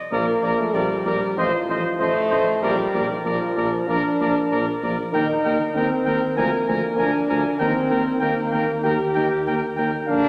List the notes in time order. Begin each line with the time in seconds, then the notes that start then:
Already playing: D#5
0.11 A#1 F3 A#3 A#4 D5
0.43 A#1 F3 A#4 D5
0.59 A3
0.74 A#1 F3 G3 A#4 D5
1.05 A#1 F3 A#4 D5
1.37 A1 F3 C5 D#5
1.68 A1 F3 C5 D#5
1.99 A1 F3 A3 C5 D#5
2.30 A1 F3 C5 D#5
2.62 A#1 F3 G3 A#4 D5
2.93 A#1 F3 A#4 D5
3.09 D#3
3.24 A#1 F3 A#4 D5
3.56 A#1 F3 A#4 D5
3.88 A#1 F3 D4 A#4 D5
4.20 A#1 F3 A#4 D5
4.51 A#1 F3 A#4 D5
4.82 A#1 F3 A#4 D5
5.12 D#2 D#3 D#4 A#4 G5
5.44 D#2 D#3 A#4 G5
5.74 D#2 D#3 C4 A#4 G5
6.05 D#2 D#3 A#4 G5
6.37 D2 F3 A#3 A#4 G#5
6.67 D2 F3 A#4 G#5
6.98 D2 F3 D4 A#4 G#5
7.29 D2 F3 A#4 G#5
7.59 D#2 D#3 C4 A#4 G5
7.89 D#2 D#3 A#4 G5
8.20 D#2 D#3 A#3 A#4 G5
8.52 D#2 D#3 A#4 G5
8.83 D#2 D#3 G4 A#4 G5
9.15 D#2 D#3 A#4 G5
9.46 D#2 D#3 A#4 G5
9.77 D#2 D#3 A#4 G5
10.08 A#1 D3 D4 A#4 F5